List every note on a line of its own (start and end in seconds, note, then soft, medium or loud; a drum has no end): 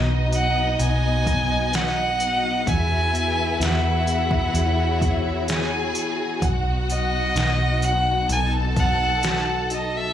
0.00 0.76 B1 medium
0.00 2.63 B2 medium
0.00 0.30 F#3 medium
0.00 0.78 B3 soft
0.00 2.64 B3 medium
0.00 2.63 D#4 medium
0.00 2.64 D#4 medium
0.00 10.13 F#4 medium
0.00 2.63 D#5 loud
0.31 1.25 F#3 medium
0.31 0.77 F#5 loud
0.31 open hi-hat medium
0.79 2.63 B1 medium
0.79 2.18 B3 medium
0.79 1.76 G#5 loud
0.79 open hi-hat medium
1.26 2.63 F#3 medium
1.26 kick medium
1.26 open hi-hat medium
1.73 2.64 D#4 medium
1.73 2.70 F#5 loud
1.73 snare loud
1.73 open hi-hat medium
2.20 2.65 B3 medium
2.20 open hi-hat medium
2.67 3.57 E2 loud
2.67 6.38 E3 medium
2.67 6.39 E3 medium
2.67 6.38 E4 medium
2.67 5.45 E4 medium
2.67 6.38 G#4 medium
2.67 4.53 B4 medium
2.67 5.44 E5 medium
2.67 3.63 G#5 loud
2.67 kick loud
2.67 open hi-hat medium
3.13 4.06 B3 medium
3.13 open hi-hat medium
3.60 4.50 E2 loud
3.60 4.53 E4 soft
3.60 5.96 F#5 medium
3.60 snare loud
3.60 open hi-hat medium
4.07 5.00 B3 soft
4.07 open hi-hat medium
4.31 kick medium
4.54 5.91 E2 loud
4.54 5.94 E4 medium
4.54 6.40 C#5 medium
4.54 open hi-hat medium
5.01 6.38 B3 medium
5.01 kick medium
5.01 open hi-hat medium
5.48 6.39 G#4 medium
5.48 6.40 G#4 medium
5.48 6.40 G#5 loud
5.48 snare loud
5.48 open hi-hat medium
5.95 6.40 E4 medium
5.95 open hi-hat medium
6.42 7.32 B1 loud
6.42 10.13 B2 medium
6.42 10.13 B3 medium
6.42 10.13 D#4 medium
6.42 8.26 F#4 medium
6.42 8.26 F#5 medium
6.42 kick loud
6.42 open hi-hat medium
6.89 7.82 F#3 medium
6.89 7.86 D#5 loud
6.89 open hi-hat medium
7.36 8.25 B1 loud
7.36 8.29 D#4 medium
7.36 snare loud
7.36 open hi-hat medium
7.82 8.76 F#3 medium
7.82 8.30 F#5 loud
7.82 open hi-hat medium
8.29 10.13 B1 medium
8.29 9.69 D#4 medium
8.29 10.13 A4 loud
8.29 8.52 G#5 loud
8.29 10.13 A5 loud
8.29 open hi-hat medium
8.76 10.13 F#3 medium
8.76 9.67 F#5 loud
8.76 kick medium
8.76 open hi-hat medium
9.23 10.13 F#4 medium
9.23 snare loud
9.23 open hi-hat medium
9.70 10.13 D#4 medium
9.70 9.99 D#5 medium
9.70 open hi-hat medium
9.97 10.13 E5 loud